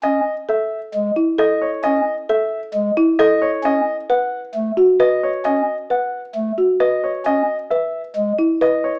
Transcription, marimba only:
X:1
M:4/4
L:1/8
Q:1/4=133
K:Alyd
V:1 name="Marimba"
z2 A z2 E A z | z2 A z2 E A z | z2 B z2 F B z | z2 B z2 F B z |
z2 B z2 E B z |]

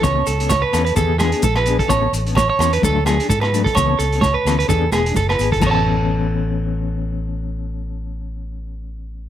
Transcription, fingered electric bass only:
X:1
M:4/4
L:1/8
Q:"Swing 16ths" 1/4=129
K:A
V:1 name="Fingered electric bass" clef=bass
C,, C,,2 E,, E,,2 _B,,,2 | A,,, A,,,2 E,, D,,2 G,,2 | C,, C,,2 D,, E,, E,,, F,,, G,,, | A,,,8- |
A,,,8 |]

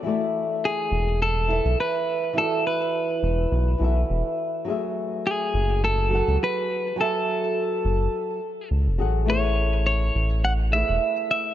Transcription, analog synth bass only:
X:1
M:4/4
L:1/16
Q:"Swing 16ths" 1/4=104
K:F#m
V:1 name="Analog synth bass" clef=bass
z6 E,,,4- E,,, B,,, z4 | z6 E,,,2 B,,,2 B,,,2 E,,, z3 | z6 F,,,4- F,,, C,, z4 | z6 F,,,2 z4 C,, E,,, A,,,2- |
A,,,6 A,,,4- A,,, E,,, z4 |]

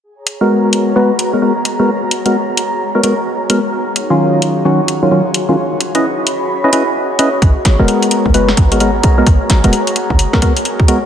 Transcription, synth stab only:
X:1
M:4/4
L:1/16
Q:"Swing 16ths" 1/4=130
K:G#m
V:1 name="Synth stab"
z3 [G,B,FA]4- [G,B,FA] [G,B,FB] z2 [G,B,FA] [G,B,FA] z2 [G,B,FA] | z3 [G,B,FA] z4 z [G,B,FA] [G,B,FA] z3 [G,B,FA] z | z3 [D,F,C^E]4- [D,F,CE] [D,F,CF] z2 [D,F,CE] [D,F,CE] z2 [D,F,CE] | z3 [CEBd] z4 z [CEBd] [CEBd] z3 [CEBd] z |
z3 [G,B,FA]4- [G,B,FA] [G,B,FB] z2 [G,B,FA] [G,B,FA] z2 [G,B,FA] | z3 [G,B,FA] z4 z [G,B,FA] [G,B,FA] z3 [G,B,FA] z |]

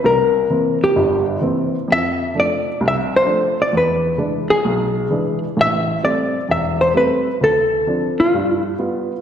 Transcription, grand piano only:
X:1
M:4/4
L:1/8
Q:"Swing" 1/4=130
K:C
V:1 name="Grand piano" clef=bass
C,,2 [E,_B,C] z [G,,,G,,]2 [E,B,C] z | F,,2 [F,A,D] z C,,2 [F,A,D] z | E,,2 [E,^G,D] z B,,,2 [E,G,D] z | A,,,2 [G,A,C] z E,,,2 [G,A,C] z |
D,,2 [F,CD] z G,,2 [G,B,F] z |]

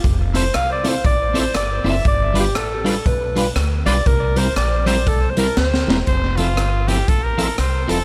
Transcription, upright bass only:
X:1
M:4/4
L:1/8
Q:"Swing" 1/4=119
K:F
V:1 name="Upright bass" clef=bass
F,,,2 C,,2 A,,,2 G,,, _G,,, | G,,,2 A,,,2 =B,,,2 D,, B,,, | C,,2 B,,,2 C,,2 D,, E,,, | F,,,2 G,,,2 A,,,2 C,, E,,, |]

